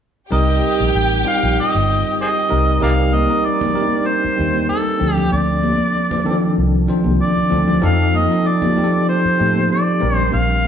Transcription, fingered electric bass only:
0.32 C2
0.80 A#1
0.95 A1
1.43 A#1
1.58 muted fingered electric bass stroke
1.75 G1
2.52 C2
2.83 C2
4.25 muted fingered electric bass stroke
4.39 D#2
5.01 D2
5.33 D2
6.58 C2
7.06 C2
7.38 muted fingered electric bass stroke
7.52 D2
7.83 F2
9.25 muted fingered electric bass stroke
9.40 A2
10.03 A#1
10.34 A#1

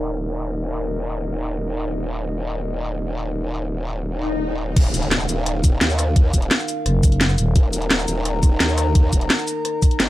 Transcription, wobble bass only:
Already playing: D#1
4.76 D#1
5.29 D#1
5.81 D#2
6.33 D#1
7.56 D#1
8.08 D#1
8.60 D#2
9.13 D#1
10.00 F#1

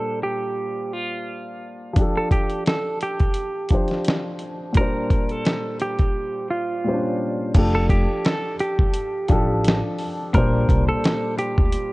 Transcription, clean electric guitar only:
Already playing: A4
0.23 G4
0.93 F4
2.18 A4
2.32 G4
2.68 A4
3.03 G4
4.77 A#4
5.31 A4
5.82 G4
6.50 F4
7.75 A4
7.90 G4
8.26 A4
8.60 G4
10.34 A#4
10.88 A4
11.39 G4

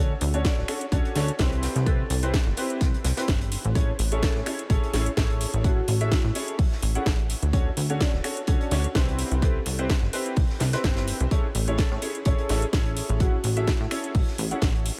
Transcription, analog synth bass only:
Already playing: D2
0.21 D2
0.58 D1
0.92 D2
1.16 D2
1.39 C2
1.76 C2
2.10 C2
2.46 G1
2.81 C2
3.05 C2
3.28 G1
3.65 A1
3.99 A1
4.36 A2
4.70 A1
4.93 A1
5.17 A1
5.53 A1
5.88 A1
6.24 A2
6.59 A1
6.82 A1
7.06 A1
7.43 D2
7.77 D2
8.13 D1
8.48 D2
8.71 D2
8.95 C2
9.31 C2
9.66 C2
10.02 G1
10.37 C2
10.60 C2
10.84 G1
11.20 C2
11.55 A1
11.91 A2
12.26 A1
12.49 A1
12.73 A1
13.09 A1
13.44 A1
13.80 A2
14.15 A1
14.38 A1
14.62 A1

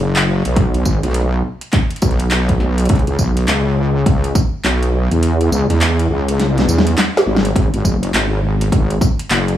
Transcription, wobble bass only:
0.00 F#1
0.46 B1
0.86 G#1
1.04 B1
2.02 B1
2.90 C#2
3.08 C#2
3.19 B1
3.48 C#2
4.06 C#2
4.64 B1
5.11 E2
5.52 C#2
5.69 E2
6.10 C#2
6.68 E2
7.26 G#1
7.56 G#1
7.74 G#1
7.85 F#1
8.14 G#1
8.72 G#1
9.30 F#1

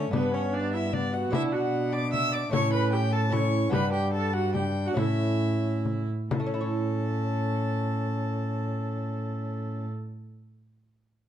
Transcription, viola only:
Already playing: C#4
0.14 B3
0.34 C#4
0.53 D4
0.73 E4
0.93 D4
1.13 F#4
1.32 E4
1.52 F#4
1.92 D5
2.12 E5
2.32 D5
2.53 C#5
2.73 B4
2.93 G4
3.12 A4
3.33 C#5
3.73 B4
3.93 G4
4.13 A4
4.34 F#4
4.55 G4
4.86 F#4
4.97 E4
6.32 A4

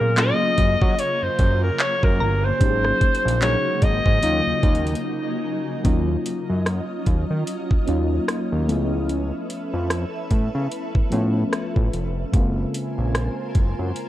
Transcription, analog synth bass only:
0.01 A#2
0.58 F#2
0.82 F#3
1.23 F#2
1.39 F#2
2.03 F#2
2.21 G1
2.61 G#1
3.25 A#1
3.83 G#1
4.06 G#2
4.23 D#2
4.47 D#2
4.64 D#2
5.85 D#2
6.49 F#2
7.07 D#2
7.30 D#3
7.71 D#2
7.88 D#2
8.52 D#2
8.69 C#2
9.74 F2
10.31 A2
10.55 C#3
10.95 A2
11.12 A2
11.76 A1
11.94 F1
12.34 F#1
12.98 A#1
13.56 F#1
13.79 F#2

